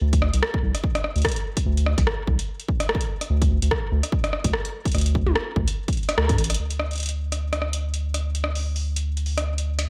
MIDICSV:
0, 0, Header, 1, 3, 480
1, 0, Start_track
1, 0, Tempo, 410959
1, 16, Time_signature, 4, 2, 24, 8
1, 11552, End_track
2, 0, Start_track
2, 0, Title_t, "Analog synth bass"
2, 0, Program_c, 0, 38
2, 17, Note_on_c, 0, 38, 97
2, 349, Note_off_c, 0, 38, 0
2, 391, Note_on_c, 0, 36, 90
2, 476, Note_off_c, 0, 36, 0
2, 736, Note_on_c, 0, 36, 93
2, 845, Note_off_c, 0, 36, 0
2, 1352, Note_on_c, 0, 38, 86
2, 1436, Note_off_c, 0, 38, 0
2, 1938, Note_on_c, 0, 38, 98
2, 2270, Note_off_c, 0, 38, 0
2, 2311, Note_on_c, 0, 36, 91
2, 2396, Note_off_c, 0, 36, 0
2, 2656, Note_on_c, 0, 36, 95
2, 2765, Note_off_c, 0, 36, 0
2, 3856, Note_on_c, 0, 38, 102
2, 4189, Note_off_c, 0, 38, 0
2, 4230, Note_on_c, 0, 38, 89
2, 4315, Note_off_c, 0, 38, 0
2, 4576, Note_on_c, 0, 38, 96
2, 4685, Note_off_c, 0, 38, 0
2, 5190, Note_on_c, 0, 38, 83
2, 5276, Note_off_c, 0, 38, 0
2, 5777, Note_on_c, 0, 38, 102
2, 6109, Note_off_c, 0, 38, 0
2, 6151, Note_on_c, 0, 38, 90
2, 6236, Note_off_c, 0, 38, 0
2, 6496, Note_on_c, 0, 38, 93
2, 6604, Note_off_c, 0, 38, 0
2, 7216, Note_on_c, 0, 38, 82
2, 7350, Note_on_c, 0, 43, 87
2, 7368, Note_off_c, 0, 38, 0
2, 7435, Note_off_c, 0, 43, 0
2, 7457, Note_on_c, 0, 33, 94
2, 7656, Note_off_c, 0, 33, 0
2, 7698, Note_on_c, 0, 38, 89
2, 11516, Note_off_c, 0, 38, 0
2, 11552, End_track
3, 0, Start_track
3, 0, Title_t, "Drums"
3, 150, Note_on_c, 9, 36, 104
3, 151, Note_on_c, 9, 42, 49
3, 256, Note_on_c, 9, 37, 71
3, 267, Note_off_c, 9, 36, 0
3, 268, Note_off_c, 9, 42, 0
3, 373, Note_off_c, 9, 37, 0
3, 391, Note_on_c, 9, 42, 61
3, 497, Note_on_c, 9, 37, 122
3, 508, Note_off_c, 9, 42, 0
3, 614, Note_off_c, 9, 37, 0
3, 631, Note_on_c, 9, 36, 113
3, 747, Note_off_c, 9, 36, 0
3, 871, Note_on_c, 9, 37, 36
3, 871, Note_on_c, 9, 42, 63
3, 976, Note_on_c, 9, 36, 105
3, 988, Note_off_c, 9, 37, 0
3, 988, Note_off_c, 9, 42, 0
3, 1093, Note_off_c, 9, 36, 0
3, 1111, Note_on_c, 9, 37, 80
3, 1111, Note_on_c, 9, 42, 35
3, 1217, Note_off_c, 9, 37, 0
3, 1217, Note_on_c, 9, 37, 56
3, 1228, Note_off_c, 9, 42, 0
3, 1334, Note_off_c, 9, 37, 0
3, 1351, Note_on_c, 9, 42, 27
3, 1376, Note_off_c, 9, 42, 0
3, 1376, Note_on_c, 9, 42, 31
3, 1422, Note_off_c, 9, 42, 0
3, 1422, Note_on_c, 9, 42, 36
3, 1456, Note_on_c, 9, 36, 116
3, 1457, Note_off_c, 9, 42, 0
3, 1457, Note_on_c, 9, 37, 112
3, 1457, Note_on_c, 9, 42, 42
3, 1501, Note_off_c, 9, 42, 0
3, 1501, Note_on_c, 9, 42, 49
3, 1537, Note_off_c, 9, 42, 0
3, 1537, Note_on_c, 9, 42, 51
3, 1573, Note_off_c, 9, 36, 0
3, 1574, Note_off_c, 9, 37, 0
3, 1592, Note_off_c, 9, 42, 0
3, 1592, Note_on_c, 9, 42, 51
3, 1709, Note_off_c, 9, 42, 0
3, 1831, Note_on_c, 9, 36, 103
3, 1832, Note_on_c, 9, 42, 63
3, 1948, Note_off_c, 9, 36, 0
3, 1948, Note_off_c, 9, 42, 0
3, 2072, Note_on_c, 9, 42, 47
3, 2177, Note_on_c, 9, 37, 72
3, 2189, Note_off_c, 9, 42, 0
3, 2294, Note_off_c, 9, 37, 0
3, 2311, Note_on_c, 9, 36, 120
3, 2311, Note_on_c, 9, 42, 59
3, 2417, Note_on_c, 9, 37, 116
3, 2427, Note_off_c, 9, 36, 0
3, 2428, Note_off_c, 9, 42, 0
3, 2534, Note_off_c, 9, 37, 0
3, 2656, Note_on_c, 9, 36, 99
3, 2773, Note_off_c, 9, 36, 0
3, 2791, Note_on_c, 9, 42, 63
3, 2908, Note_off_c, 9, 42, 0
3, 3032, Note_on_c, 9, 42, 35
3, 3136, Note_on_c, 9, 36, 108
3, 3149, Note_off_c, 9, 42, 0
3, 3253, Note_off_c, 9, 36, 0
3, 3271, Note_on_c, 9, 37, 73
3, 3271, Note_on_c, 9, 42, 61
3, 3377, Note_off_c, 9, 37, 0
3, 3377, Note_on_c, 9, 37, 115
3, 3388, Note_off_c, 9, 42, 0
3, 3443, Note_on_c, 9, 36, 100
3, 3494, Note_off_c, 9, 37, 0
3, 3512, Note_on_c, 9, 42, 50
3, 3560, Note_off_c, 9, 36, 0
3, 3629, Note_off_c, 9, 42, 0
3, 3752, Note_on_c, 9, 37, 39
3, 3752, Note_on_c, 9, 42, 64
3, 3869, Note_off_c, 9, 37, 0
3, 3869, Note_off_c, 9, 42, 0
3, 3990, Note_on_c, 9, 36, 110
3, 3991, Note_on_c, 9, 42, 51
3, 4107, Note_off_c, 9, 36, 0
3, 4108, Note_off_c, 9, 42, 0
3, 4231, Note_on_c, 9, 42, 63
3, 4336, Note_on_c, 9, 36, 94
3, 4336, Note_on_c, 9, 37, 112
3, 4348, Note_off_c, 9, 42, 0
3, 4453, Note_off_c, 9, 36, 0
3, 4453, Note_off_c, 9, 37, 0
3, 4711, Note_on_c, 9, 37, 38
3, 4711, Note_on_c, 9, 42, 63
3, 4816, Note_on_c, 9, 36, 117
3, 4828, Note_off_c, 9, 37, 0
3, 4828, Note_off_c, 9, 42, 0
3, 4933, Note_off_c, 9, 36, 0
3, 4951, Note_on_c, 9, 37, 83
3, 4951, Note_on_c, 9, 42, 36
3, 5057, Note_off_c, 9, 37, 0
3, 5057, Note_on_c, 9, 37, 62
3, 5068, Note_off_c, 9, 42, 0
3, 5174, Note_off_c, 9, 37, 0
3, 5190, Note_on_c, 9, 36, 97
3, 5191, Note_on_c, 9, 42, 61
3, 5297, Note_on_c, 9, 37, 108
3, 5307, Note_off_c, 9, 36, 0
3, 5308, Note_off_c, 9, 42, 0
3, 5413, Note_off_c, 9, 37, 0
3, 5431, Note_on_c, 9, 42, 51
3, 5548, Note_off_c, 9, 42, 0
3, 5670, Note_on_c, 9, 36, 106
3, 5671, Note_on_c, 9, 42, 30
3, 5696, Note_off_c, 9, 42, 0
3, 5696, Note_on_c, 9, 42, 35
3, 5742, Note_off_c, 9, 42, 0
3, 5742, Note_on_c, 9, 42, 39
3, 5777, Note_off_c, 9, 42, 0
3, 5777, Note_on_c, 9, 37, 36
3, 5777, Note_on_c, 9, 42, 44
3, 5787, Note_off_c, 9, 36, 0
3, 5821, Note_off_c, 9, 42, 0
3, 5821, Note_on_c, 9, 42, 49
3, 5855, Note_off_c, 9, 42, 0
3, 5855, Note_on_c, 9, 42, 53
3, 5893, Note_off_c, 9, 37, 0
3, 5910, Note_off_c, 9, 42, 0
3, 5910, Note_on_c, 9, 42, 54
3, 6015, Note_on_c, 9, 36, 100
3, 6027, Note_off_c, 9, 42, 0
3, 6132, Note_off_c, 9, 36, 0
3, 6150, Note_on_c, 9, 48, 88
3, 6255, Note_on_c, 9, 37, 117
3, 6267, Note_off_c, 9, 48, 0
3, 6372, Note_off_c, 9, 37, 0
3, 6495, Note_on_c, 9, 36, 117
3, 6612, Note_off_c, 9, 36, 0
3, 6629, Note_on_c, 9, 42, 65
3, 6746, Note_off_c, 9, 42, 0
3, 6870, Note_on_c, 9, 36, 98
3, 6870, Note_on_c, 9, 42, 38
3, 6923, Note_off_c, 9, 42, 0
3, 6923, Note_on_c, 9, 42, 31
3, 6975, Note_off_c, 9, 42, 0
3, 6975, Note_on_c, 9, 42, 24
3, 6987, Note_off_c, 9, 36, 0
3, 7043, Note_off_c, 9, 42, 0
3, 7043, Note_on_c, 9, 42, 20
3, 7110, Note_off_c, 9, 42, 0
3, 7110, Note_on_c, 9, 37, 81
3, 7110, Note_on_c, 9, 42, 65
3, 7215, Note_off_c, 9, 37, 0
3, 7215, Note_on_c, 9, 37, 115
3, 7226, Note_off_c, 9, 42, 0
3, 7332, Note_off_c, 9, 37, 0
3, 7350, Note_on_c, 9, 36, 116
3, 7350, Note_on_c, 9, 42, 54
3, 7456, Note_off_c, 9, 42, 0
3, 7456, Note_on_c, 9, 42, 53
3, 7467, Note_off_c, 9, 36, 0
3, 7523, Note_off_c, 9, 42, 0
3, 7523, Note_on_c, 9, 42, 66
3, 7591, Note_off_c, 9, 42, 0
3, 7591, Note_on_c, 9, 37, 40
3, 7591, Note_on_c, 9, 42, 74
3, 7644, Note_off_c, 9, 42, 0
3, 7644, Note_on_c, 9, 42, 86
3, 7707, Note_off_c, 9, 37, 0
3, 7760, Note_off_c, 9, 42, 0
3, 7831, Note_on_c, 9, 42, 51
3, 7936, Note_on_c, 9, 37, 70
3, 7948, Note_off_c, 9, 42, 0
3, 8053, Note_off_c, 9, 37, 0
3, 8071, Note_on_c, 9, 42, 29
3, 8097, Note_off_c, 9, 42, 0
3, 8097, Note_on_c, 9, 42, 31
3, 8124, Note_off_c, 9, 42, 0
3, 8124, Note_on_c, 9, 42, 36
3, 8149, Note_off_c, 9, 42, 0
3, 8149, Note_on_c, 9, 42, 40
3, 8176, Note_off_c, 9, 42, 0
3, 8176, Note_on_c, 9, 42, 45
3, 8210, Note_off_c, 9, 42, 0
3, 8210, Note_on_c, 9, 42, 50
3, 8244, Note_off_c, 9, 42, 0
3, 8244, Note_on_c, 9, 42, 52
3, 8278, Note_off_c, 9, 42, 0
3, 8278, Note_on_c, 9, 42, 59
3, 8395, Note_off_c, 9, 42, 0
3, 8551, Note_on_c, 9, 37, 35
3, 8551, Note_on_c, 9, 42, 62
3, 8668, Note_off_c, 9, 37, 0
3, 8668, Note_off_c, 9, 42, 0
3, 8791, Note_on_c, 9, 37, 79
3, 8791, Note_on_c, 9, 42, 37
3, 8897, Note_off_c, 9, 37, 0
3, 8897, Note_on_c, 9, 37, 58
3, 8908, Note_off_c, 9, 42, 0
3, 9013, Note_off_c, 9, 37, 0
3, 9030, Note_on_c, 9, 42, 64
3, 9147, Note_off_c, 9, 42, 0
3, 9270, Note_on_c, 9, 42, 52
3, 9387, Note_off_c, 9, 42, 0
3, 9511, Note_on_c, 9, 37, 36
3, 9511, Note_on_c, 9, 42, 66
3, 9628, Note_off_c, 9, 37, 0
3, 9628, Note_off_c, 9, 42, 0
3, 9751, Note_on_c, 9, 42, 52
3, 9856, Note_on_c, 9, 37, 71
3, 9868, Note_off_c, 9, 42, 0
3, 9973, Note_off_c, 9, 37, 0
3, 9991, Note_on_c, 9, 46, 69
3, 10108, Note_off_c, 9, 46, 0
3, 10230, Note_on_c, 9, 46, 67
3, 10347, Note_off_c, 9, 46, 0
3, 10470, Note_on_c, 9, 42, 63
3, 10587, Note_off_c, 9, 42, 0
3, 10711, Note_on_c, 9, 42, 38
3, 10816, Note_on_c, 9, 46, 53
3, 10827, Note_off_c, 9, 42, 0
3, 10933, Note_off_c, 9, 46, 0
3, 10951, Note_on_c, 9, 37, 72
3, 10951, Note_on_c, 9, 42, 62
3, 11067, Note_off_c, 9, 37, 0
3, 11067, Note_off_c, 9, 42, 0
3, 11191, Note_on_c, 9, 42, 52
3, 11308, Note_off_c, 9, 42, 0
3, 11430, Note_on_c, 9, 37, 37
3, 11430, Note_on_c, 9, 42, 68
3, 11547, Note_off_c, 9, 37, 0
3, 11547, Note_off_c, 9, 42, 0
3, 11552, End_track
0, 0, End_of_file